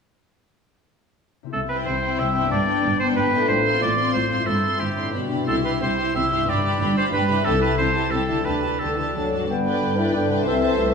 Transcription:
1.43 C3 C4 E4
1.49 G4 A4
1.54 C2 C3
1.69 C4 E4 B4 G5
1.86 C2 C3 C5
2.02 C4 E4 G5
2.19 C2 C3 E5
2.34 G2 C4 E4 G5
2.39 B3
2.43 D4
2.47 D4 G4 G5
2.52 G1 G2 B3 D5
2.67 B3 D4 G5
2.85 G1 G2
3.00 B3 D4 C5 G5
3.16 G1 G2 B4
3.32 A2 B3 D4 G5
3.36 C4
3.41 F4
3.45 C5
3.49 A1 A2
3.65 C4 F4 C6
3.82 A1 A2 D5
3.97 C4 F4 C6
4.13 A1 A2 C5
4.29 G2 C4 F4 C6
4.34 C4
4.38 E4
4.43 E4 A4 C5
4.47 G1 G2 C4 C6
4.63 C4 E4 C6
4.80 G1 G2 G4
4.95 G2 A2 C4 E4 C6
5.01 D4
5.06 G4
5.10 G1 D4 G4 B4 B5
5.14 B2
5.30 C3 D4 G4 B5
5.35 E4
5.39 G4
5.44 C2 G4 C5 C6
5.48 C3 E4 A4
5.63 E4 G4 B4 C6
5.80 C2 C3 E4 G4 C5 C6
5.98 E4 G4 C6
6.14 C2 C3 E4 G4 E5 C6
6.31 G2 E4 G4 C6
6.36 D4
6.40 G4
6.44 D4 G4 B4
6.49 G1 G2 D5 B5
6.63 D4 G4 B5
6.80 G1 G2 D4 G4 B5
6.96 D4 G4 C5 B5
7.12 G1 G2 D4 G4 B4 B5
7.27 C3 D4 G4 B5
7.32 E4
7.36 G4
7.41 A4
7.45 C2 C3 E4 G4 A5
7.60 E4 G4 B4 A5
7.77 C2 C3 E4 G4 C5 A5
7.93 E4 G4 A5
8.11 C2 C3 E4 G4 A4 A5
8.28 D3 E4 G4 A5
8.32 D4
8.37 G4
8.41 A4 B4 A5
8.46 D2 D3 D4 G4
8.62 D4 G4 A5
8.79 D2 D3 D4 G4 A4 A5
8.97 D3 E3 G4 A5
9.01 D4
9.07 F#4
9.11 A4
9.16 D2 F#3 D4 F#4 A5
9.31 G2 D4 F#4 A5
9.36 D4
9.40 G4
9.44 B3 B4
9.50 G1 G2 D3 G5
9.66 B4 D5 G5
9.82 G1 G2
9.97 E4 B4 D5 G5
10.14 G1 G2 D3 D4 G5
10.27 C3 B4 D5 F#5 G5
10.32 E4
10.36 A4
10.41 C2 C5
10.46 C3 E3 C4 E5 A5
10.61 C5 E5 A5
10.76 C2 C3 E3 A3 E5
10.91 E5

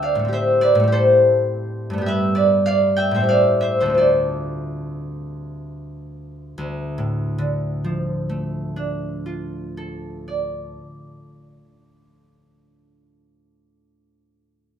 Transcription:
Already playing: D2 A3 C4 D4 F4 A4 C5 E5 G5
0.02 D5 F5
0.15 A2 A3
0.25 C4 G4
0.33 C5 E5
0.61 B4 D5
0.75 A2
0.80 A3 C4
0.87 G4
0.92 A4 C5
1.90 G2 A3
1.98 B3 G4
2.06 B4 E5
2.35 B4 D5
2.66 D5 F5
2.96 E5 G5
3.11 A2 E5
3.15 A3 C5
3.20 C4 G4
3.29 D5 F5
3.61 C5 E5
3.80 D2 A4 C5
3.86 A3
3.90 C4
3.94 F4 D5
3.99 A4
6.58 D2
6.98 A2
7.38 D3
7.84 F3
8.29 A3
8.76 D4
9.26 F4
9.77 A4
10.28 D5

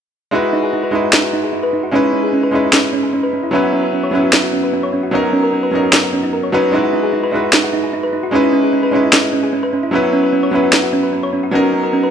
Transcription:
0.31 G#3 D#4 E4 F#4 B4
0.43 F#4
0.53 D#4
0.63 G#4
0.73 D#4
0.83 B4
0.91 G#3 D#4 E4 F#4
0.95 B4
1.03 F#4
1.13 D#4, snare
1.23 F#4
1.33 D#4
1.43 G#4
1.53 D#4
1.63 B4
1.73 D#4
1.83 F#4
1.91 G#3 C#4 D#4 E4 B4
2.03 E4
2.13 C#4
2.23 G#4
2.33 C#4
2.43 B4
2.51 G#3 C#4 D#4 E4
2.55 B4
2.63 E4
2.73 C#4, snare
2.83 E4
2.93 C#4
3.03 G#4
3.13 C#4
3.23 B4
3.33 C#4
3.44 E4
3.51 F#3 B3 C#4 E4 B4
3.64 F#4
3.73 C#4
3.83 B4
3.93 C#4
4.03 C#5
4.11 F#3 B3 C#4 E4 B4
4.23 F#4
4.33 C#4, snare
4.43 F#4
4.53 C#4
4.64 B4
4.73 C#4
4.83 C#5
4.93 C#4
5.03 F#4
5.11 F#3 B3 C#4 D#4 A#4
5.23 F#4
5.33 C#4
5.43 A#4
5.53 C#4
5.63 B4
5.71 F#3 B3 C#4 D#4
5.75 A#4
5.83 F#4
5.93 C#4, snare
6.03 F#4
6.13 C#4
6.23 D#4
6.33 A#4
6.43 C#5
6.52 F#3 B3 C#4 D#4 F#4 B4
6.63 C#4
6.71 G#3 D#4 E4 F#4
6.75 B4
6.83 F#4
6.93 D#4
7.03 G#4
7.13 D#4
7.24 B4
7.31 G#3 D#4 E4 F#4
7.35 B4
7.44 F#4
7.53 D#4, snare
7.64 F#4
7.73 D#4
7.84 G#4
7.93 D#4
8.03 B4
8.13 D#4
8.23 F#4
8.31 G#3 C#4 D#4 E4
8.35 B4
8.43 E4
8.53 C#4
8.63 G#4
8.73 C#4
8.83 B4
8.91 G#3 C#4 D#4 E4
8.95 B4
9.03 E4
9.13 C#4, snare
9.23 E4
9.33 C#4
9.43 G#4
9.53 C#4
9.63 B4
9.73 C#4
9.83 E4
9.91 F#3 B3 C#4 E4
9.95 B4
10.03 F#4
10.13 C#4
10.23 B4
10.33 C#4
10.43 C#5
10.51 F#3 B3 C#4 E4
10.55 B4
10.63 F#4
10.73 C#4, snare
10.83 F#4
10.93 C#4
11.03 B4
11.13 C#4
11.23 C#5
11.33 C#4
11.43 F#4
11.51 F#3 B3 C#4 D#4
11.55 A#4
11.63 F#4
11.73 C#4
11.84 A#4
11.93 C#4
12.03 B4

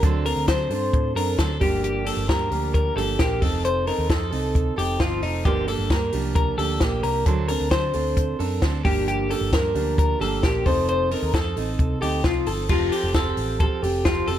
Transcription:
0.02 D2 D3 F#3 C4 D4 A4, kick, closed hi-hat
0.25 C4 D4 A4 A#4, open hi-hat
0.36 D2
0.47 D3 F#3 C4 D4 A4 C5, kick, snare, closed hi-hat
0.70 G2 C4 D4 A4, open hi-hat
0.93 A2, kick, closed hi-hat
1.15 F#2 C4 D4 A4 A#4, open hi-hat
1.37 D2 F#3 C4 D4 A4, kick, snare, closed hi-hat
1.60 G1 G2 D3 F3 A#3 D4 G4, kick, open hi-hat
1.84 G4, closed hi-hat
2.05 F3 A#3 D4 G4 A4, open hi-hat
2.17 G1
2.27 G2 F3 A#3 D4 G4 A#4, kick, snare, closed hi-hat
2.50 D2 F3 A#3 D4 G4, open hi-hat
2.74 A#4, kick, closed hi-hat
2.96 G1 F3 A#3 D4 G4 A4, open hi-hat
3.19 A#1 F3 A#3 D4 G4, kick, snare, closed hi-hat
3.41 F1 F3 C4 D#4 A4, kick, open hi-hat
3.65 C5, closed hi-hat
3.86 C4 D#4 A4 A#4, open hi-hat
3.98 D#2
4.09 F2 F3 C4 D#4 A4, kick, snare, closed hi-hat
4.31 C2 C4 D#4 A4, open hi-hat
4.55 kick, closed hi-hat
4.76 F1 C4 D#4 G4 A4, open hi-hat
4.99 G1 F3 C4 D#4 F4 A4, kick, snare, closed hi-hat
5.22 F1 D#4, open hi-hat
5.45 G1 G2 D3 F3 A#3 D4 G4, kick, closed hi-hat
5.67 F3 A#3 D4 G4 A4, open hi-hat
5.79 G1
5.90 G2 F3 A#3 D4 G4 A#4, kick, snare, closed hi-hat
6.12 C2 F3 A#3 D4 G4, open hi-hat
6.35 A#4, kick, closed hi-hat
6.58 D2 F3 A#3 D4 G4 A4, open hi-hat
6.80 A#1 F3 A#3 D4 G4, kick, snare, closed hi-hat
7.03 C2 A#4, open hi-hat
7.26 D2 D3 F#3 C4 D4 A4, kick, closed hi-hat
7.48 C4 D4 A4 A#4, open hi-hat
7.60 D2
7.71 D3 F#3 C4 D4 A4 C5, kick, snare, closed hi-hat
7.93 D2 C4 D4 A4, open hi-hat
8.17 kick, closed hi-hat
8.39 F#2 C4 D4 A4 A#4, open hi-hat
8.62 D2 F#3 C4 D4 A4, kick, snare, closed hi-hat
8.84 G1 G2 D3 F3 A#3 D4 G4, kick, open hi-hat
9.08 G4, closed hi-hat
9.30 F3 A#3 D4 G4 A4, open hi-hat
9.41 G1
9.52 G2 F3 A#3 D4 G4 A#4, kick, snare, closed hi-hat
9.74 D2 F3 A#3 D4 G4, open hi-hat
9.98 A#4, kick, closed hi-hat
10.20 G1 F3 A#3 D4 G4 A4, open hi-hat
10.43 A#1 F3 A#3 D4 G4, kick, snare, closed hi-hat
10.65 F1 F3 C4 D#4 A4 C5, kick, open hi-hat
10.88 C5, closed hi-hat
11.11 C4 D#4 A4 A#4, open hi-hat
11.23 D#2
11.33 F2 F3 C4 D#4 A4, kick, snare, closed hi-hat
11.56 A1 C4 D#4 A4, open hi-hat
11.79 C2, kick, closed hi-hat
12.01 D2 C4 D#4 G4 A4, open hi-hat
12.23 C2 F3 C4 D#4 F4 A4, kick, snare, closed hi-hat
12.46 G1 A4, open hi-hat
12.69 F1 F3 C4 F4 G4 A4, kick, crash
12.92 G4, open hi-hat
13.04 F1
13.14 F3 C4 G4 A4, kick, snare, closed hi-hat
13.37 A1, open hi-hat
13.60 F3 C4 G4 A4, kick, closed hi-hat
13.82 F1 C4 G4 A4, open hi-hat
14.05 F3 C4 F4 G4 A4, kick, snare, closed hi-hat
14.27 F1 C4 G4 A4, open hi-hat

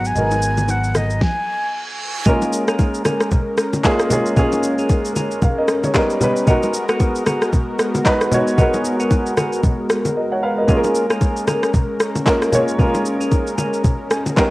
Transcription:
Already playing: G#1 F#3 G#3 B3 D#4 F#4 A#4 B4 A#5
0.05 G#5, shaker
0.15 G#1 G#3 B3 D#4 F#4 A#4, low conga, shaker
0.31 high bongo, shaker
0.42 shaker
0.57 low bongo, shaker
0.68 F#5, high bongo, shaker
0.84 shaker
0.95 D#5, cross-stick, low bongo, shaker
1.10 shaker
1.21 G#5, kick, snare, reverse cymbal
2.26 G#3 A#3 C#4 F4 G#4 A#4, kick, low conga, shaker
2.42 high bongo, shaker
2.53 shaker
2.68 C#4 G#4 A#4, cross-stick, shaker
2.79 kick, high bongo, shaker
2.94 shaker
3.05 C#4 G#4 A#4, cross-stick, low bongo, shaker
3.21 cross-stick, shaker
3.31 kick, low conga, shaker
3.58 cross-stick, shaker
3.73 low bongo, shaker
3.83 G#3 A#3 C#4 F4 G#4, kick, clap, high bongo, shaker
3.99 cross-stick, shaker
4.09 G#3 A#3 C#4 F4 G#4, high bongo, low bongo, low conga, shaker
4.26 shaker
4.36 G#3 A#3 C#4 F4 G#4 A#4, kick, low conga, shaker
4.52 high bongo, shaker
4.63 shaker
4.78 C#4 G#4 A#4, shaker
4.89 kick, high bongo, shaker
5.05 shaker
5.16 C#4 G#4 A#4, low bongo, shaker
5.31 shaker
5.42 A#4 F5, kick, low conga, shaker
5.58 A#4 D#5
5.68 cross-stick, shaker
5.84 G#4 C#5, low bongo, shaker
5.94 G3 B3 C#4 D#4 A#4 B4, kick, clap, high bongo, shaker
6.10 shaker
6.20 G3 B3 C#4 D#4 B4, high bongo, low bongo, low conga, shaker
6.36 shaker
6.46 G#3 B3 D#4 F#4 G#4 A#4, kick, low conga, shaker
6.63 high bongo, shaker
6.74 shaker
6.89 B3 F#4 G#4 A#4, cross-stick, shaker
7.00 kick, high bongo, shaker
7.16 shaker
7.26 B3 F#4 G#4 A#4, cross-stick, low bongo, shaker
7.42 cross-stick, shaker
7.53 kick, low conga, shaker
7.79 cross-stick, shaker
7.95 low bongo, shaker
8.04 G#3 B3 D#4 F#4 B4, kick, clap, high bongo, shaker
8.21 cross-stick, shaker
8.31 G#3 B3 D#4 F#4 C#5, high bongo, low bongo, low conga, shaker
8.47 shaker
8.57 G#3 B3 D#4 F#4 G#4 A#4, kick, low conga, shaker
8.74 high bongo, shaker
8.85 shaker
9.00 B3 F#4 G#4 A#4, shaker
9.11 kick, high bongo, shaker
9.26 shaker
9.37 B3 F#4 G#4 A#4, cross-stick, low bongo, shaker
9.53 shaker
9.63 kick, low conga, shaker
9.90 cross-stick, shaker
10.05 low bongo, shaker
10.17 A#4 D#5
10.32 C#5 F#5
10.43 B4 F5
10.58 A#4 D#5
10.67 G#3 A#3 C#4 F4 G#4 A#4, kick, low conga, shaker
10.77 A#4
10.84 high bongo, shaker
10.95 shaker
11.10 C#4 G#4 A#4, cross-stick, shaker
11.21 kick, high bongo, shaker
11.37 shaker
11.47 C#4 G#4 A#4, cross-stick, low bongo, shaker
11.63 cross-stick, shaker
11.74 kick, low conga, shaker
12.00 cross-stick, shaker
12.16 low bongo, shaker
12.25 G#3 A#3 C#4 F4 A#4, kick, clap, high bongo, shaker
12.42 cross-stick, shaker
12.52 G#3 A#3 C#4 F4 C#5, high bongo, low bongo, low conga, shaker
12.68 shaker
12.78 G#3 A#3 C#4 F4 G#4 A#4, kick, low conga, shaker
12.95 high bongo, shaker
13.06 shaker
13.20 C#4 G#4 A#4, shaker
13.32 kick, high bongo, shaker
13.47 shaker
13.58 C#4 G#4 A#4, low bongo, shaker
13.73 shaker
13.84 kick, low conga, shaker
14.11 G#5, cross-stick, shaker
14.26 low bongo, shaker
14.36 G3 B3 C#4 D#4 A#4 B4 G5, kick, clap, high bongo, shaker

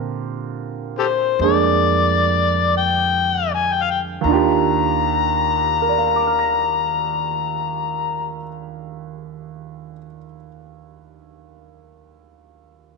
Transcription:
Already playing: A#2 D3 C4 F4 G4 A#4
0.99 G4 A4 C5
1.39 F2 G#3 A#3 D4 D5
1.44 G#4
2.77 G5
3.54 G#5
3.72 G5
3.82 F5
3.90 G5
4.21 D#2 D#3 A#5
4.27 D4 F4
4.33 G4
5.82 A#4
5.89 D5
5.98 F5
6.07 A#5
6.16 D6
6.27 F6
6.39 A#6

